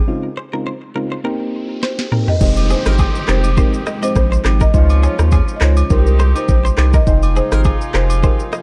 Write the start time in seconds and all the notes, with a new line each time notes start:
0.07 C#3 G#3 C4 D#4 F4, riser
0.37 C5
0.53 C#3 G#3 C4 D#4 F4 A#4
0.67 C5
0.95 C#3 G#3 C4 D#4 F4 A#4
1.12 C5
1.24 A#3 C4 D#4 G4 A#4
1.83 C5, snare
1.99 snare
2.12 A#3 C4 D#4 G4 A#4, mid tom
2.28 G4 D#5, floor tom
2.41 F1 F3 G#3 C4 D#4 G4 D#5, kick, crash, downlifter, shaker
2.56 high agogo, shaker
2.70 G#4 C5, shaker
2.86 G#1 G#3 C4 D#4 G4 A#4, cross-stick, shaker
2.98 G#4, kick, high agogo, shaker
3.15 shaker
3.28 F1 G#3 C4 D#4 G4 A#4 C5, cross-stick, clap, shaker
3.44 high agogo, shaker
3.57 G#3 C4 D#4 G4 A#4 C5, kick, shaker
3.74 shaker
3.86 D#5, cross-stick, shaker
4.02 G#3 C4 D#4 G4 C5 D#5, high agogo, shaker
4.16 A#1 C5, kick, cross-stick, shaker
4.32 C5, shaker
4.45 G#1 G#3 C4 D#4 G4, cross-stick, clap, high agogo, shaker
4.61 A#4 D#5, kick, shaker
4.74 C#2 C#3 F3 G#3 C#4 D#4 F4 G#4 C5 D#5, kick, shaker
4.90 high agogo, shaker
5.03 G#4 C#5, shaker
5.19 D#2 D#4 F4 G#4 A#4 C5, cross-stick, shaker
5.31 G#4, kick, high agogo, shaker
5.48 shaker
5.56 D#5
5.61 C#2 D#4 F4 G#4 A#4 C5 C#5, cross-stick, clap, shaker
5.77 high agogo, shaker
5.90 C2 C3 G3 A#3 C4 D#4 G4 A#4 C5, kick, shaker
5.99 G4
6.07 A#4, shaker
6.19 C5, cross-stick, shaker
6.35 D#4 G4 A#4 C5, high agogo, shaker
6.48 A#1 C5, kick, shaker
6.65 C5, shaker
6.77 C2 D#4 G4 A#4 C5, cross-stick, clap, high agogo, shaker
6.93 A#4 D#5, kick, shaker
7.07 F1 F3 D#4 F4 G#4 C5 D#5 G5, kick, shaker
7.23 high agogo, shaker
7.36 G#4 C5, shaker
7.52 G#1 D#4 G4 G#4 A#4 C5, cross-stick, shaker
7.64 G#4, kick, high agogo, shaker
7.81 shaker
7.94 F1 D#4 G4 G#4 A#4 C5, cross-stick, clap, shaker
8.10 high agogo, shaker
8.23 D#4 G4 G#4 A#4 C5, kick, shaker
8.40 shaker
8.53 D#5, cross-stick, shaker